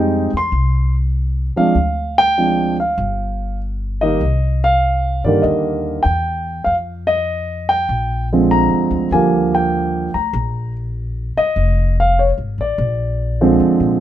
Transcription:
Already playing: F2 G3 G#3 C4 D#4 G5
0.33 E2 C6
0.52 C2
1.56 F3 G#3 C4 D4 F5, muted upright bass stroke
1.75 D2
2.18 G5
2.38 F3 G#3 C4 D4
2.80 F5
2.98 G1
4.01 D#3 G3 A#3 D#4 D#5
4.21 C2
4.64 F5
5.24 G2 D3 D#3 G3 A#3 D5
5.42 D#2 D#5
6.03 E2 G5
6.64 F2 F5
7.07 D#5
7.69 G5
7.89 A#1
8.32 D3 F3 G#3 C4
8.51 A#5
8.70 F2
8.91 D2
9.11 D#2 D3 F3 G3 A#3 G#5
9.55 G5
10.14 D2 A#5
10.33 A#1
11.37 D#5, muted upright bass stroke
11.56 F1
12.00 F5
12.19 C#5
12.38 G#1
12.58 A1 D5
12.78 A#1
13.41 D3 F3 G#3 C4
13.60 F2
13.80 A#2

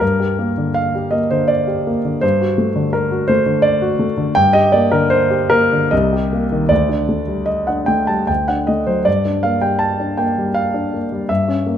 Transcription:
0.00 G2 A#4
0.20 G4
0.39 A#3
0.58 D3
0.74 F5
0.95 G4
1.11 A#3 D#5
1.31 D3 C5
1.48 D5
1.67 G4
1.87 A#3
2.05 D3
2.21 G2 C5
2.41 F#4
2.58 A3
2.76 D3
2.93 A#4
3.11 F#4
3.28 A3 C5
3.46 D3
3.62 D5
3.82 F#4
3.99 A3
4.17 D3
4.35 G2 G5
4.53 G4 D#5
4.72 A#3 D5
4.92 D3 A#4
5.10 C5
5.30 G4
5.50 A#3 A#4
5.72 D3
5.91 C2 D#5
6.13 G4
6.33 A#3
6.52 D#3
6.69 D2 D5
6.89 D4
7.09 A3
7.28 G3
7.46 D#5
7.67 D4 F#5
7.86 A3 G5
8.07 G3 A5
8.27 D2 G5
8.48 D4 F#5
8.67 A3 D#5
8.87 F#3 C5
9.05 G2 D5
9.25 D4
9.43 A#3 F5
9.62 G3 G5
9.79 A5
10.00 D4
10.17 A#3 G5
10.38 G3
10.54 F5
10.74 D4
10.94 A#3
11.12 G3
11.29 G2 E5
11.48 C#4
11.66 A#3

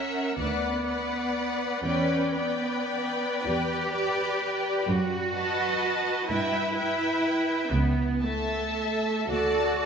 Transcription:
Already playing: C#2 C#4 A#4 E5 F#5
0.37 D2 B3 B4 D5 F#5
0.85 B4 D5 F#5
1.83 E2 C#4 B4 D5 G5
2.35 B3 B4 D5 G5
3.44 E2 G4
3.93 B4 D5 G5
4.86 F#2 F#4
5.34 B4 D#5 A5
6.28 G2 E4 B4 E5 G5
6.77 B4 E5 G5
7.71 C#2 B3
8.21 A3 A4 E5 A5
9.28 D2 F#4 A4 D5 A5
9.79 A4 D5 A5

